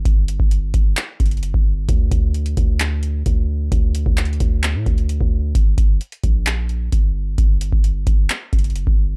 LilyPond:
<<
  \new Staff \with { instrumentName = "808-style bass" } { \clef bass \time 4/4 \key g \minor \tempo 4 = 131 g,,8. g,,8. g,,8 r8 fis,,8. g,,8. | d,8 d,4 d,4. d,4 | d,8. d,8. d,8. a,16 d,8. d,8. | g,,8 g,,8 r8 bes,,4. g,,4 |
g,,8. g,,8. g,,8 r8 fis,,8. g,,8. | }
  \new DrumStaff \with { instrumentName = "Drums" } \drummode { \time 4/4 <hh bd>8 hh16 bd16 hh8 <hh bd>8 <hc hh>8 <hh bd>32 hh32 hh32 hh32 hh16 bd8. | <hh bd>8 <hh bd>8 hh16 hh16 <hh bd>8 <hc hh>8 hh8 <hh bd>4 | <hh bd>8 hh16 bd16 \tuplet 3/2 { <hc hh>16 hh16 hh16 <hh bd>16 r16 r16 } <hc hh>8 <hh bd>16 hh16 hh16 bd8. | <hh bd>8 <hh bd>8 hh16 hh16 <hh bd>8 <hc hh>8 hh8 <hh bd>4 |
<hh bd>8 hh16 bd16 hh8 <hh bd>8 <hc hh>8 <hh bd>32 hh32 hh32 hh32 hh16 bd8. | }
>>